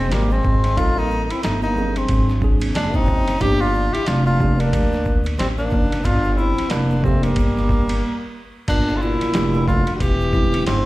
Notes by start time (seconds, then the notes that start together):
Already playing: E1 G#3 C4
0.11 G#1 G3 A#3, snare, hi-hat pedal, ride, low conga, shaker
0.30 G#3 C4, shaker
0.43 G#1, kick, low conga, shaker
0.64 snare, ride, shaker
0.76 A1 G3 C4 D#4 F4 A4, kick, ride, shaker
0.97 A#3 D#4, shaker
1.10 shaker
1.24 A#3 D#4
1.30 C4 E4, muted upright bass stroke, ride, shaker
1.43 G1 A3 D#4, snare, hi-hat pedal, ride, shaker
1.62 A#3 D#4, high conga, shaker
1.75 F#3 C4 D4 G#4, low conga, shaker
1.96 G#3 C4, ride, shaker
2.08 G#1, kick, ride, shaker
2.29 snare, shaker
2.41 F#3 C4 D4 G#4, kick, shaker
2.60 ride, high conga, shaker
2.74 F#1 G#3 D4, snare, hi-hat pedal, ride, low conga, shaker
2.93 C4 D#4, kick, shaker
3.06 kick, low conga, shaker
3.28 snare, ride, shaker
3.40 G1 F3 A#3 D4 G4, kick, ride, shaker
3.60 D4 F4, shaker
3.74 shaker
3.93 E4 G4, muted upright bass stroke, ride, shaker
4.05 F1 D4 F4, snare, hi-hat pedal, ride, shaker
4.25 D4 F4, high conga, shaker
4.39 F3 A#3 D4 G4, kick, low conga, shaker
4.58 A#3 D4, ride, shaker
4.73 D2, kick, ride, shaker
4.92 snare, shaker
5.05 kick, shaker
5.24 ride, high conga, shaker
5.37 A1 G3 C4, snare, hi-hat pedal, ride, low conga, shaker
5.57 A#3 D4, shaker
5.70 F#1, kick, low conga, shaker
5.92 snare, ride, shaker
6.03 G1 D4 F4, kick, ride, shaker
6.24 shaker
6.33 D4 F4
6.37 C4 E4, shaker
6.57 muted upright bass stroke, snare, ride, shaker
6.69 F1 A#3 D4, snare, hi-hat pedal, ride, shaker
6.91 high conga, shaker
7.02 F3 A3 A#3 C4 D4 G4, kick, low conga, shaker
7.22 G3 A#3, ride, shaker
7.36 G1, kick, ride, shaker
7.57 snare, shaker
7.69 kick, snare, shaker
7.88 ride, high conga, shaker
8.68 G1 A#2 D4, kick, crash, ride, shaker
8.89 shaker
8.96 D3 F4
9.01 A#2 E4, shaker
9.21 muted upright bass stroke, snare, ride, shaker
9.32 F1 F3 A#3 D4 G4, snare, hi-hat pedal, ride, shaker
9.54 shaker
9.67 D3 F4, kick, low conga, shaker
9.86 ride, shaker
9.95 D3 F#4
10.00 E1 E3 G4, kick, ride, shaker
10.20 shaker
10.31 D3 G3 C4 E4, kick, snare, shaker
10.39 G#3
10.52 ride, high conga, shaker
10.66 G1 G#2 C4, snare, hi-hat pedal, ride, low conga, shaker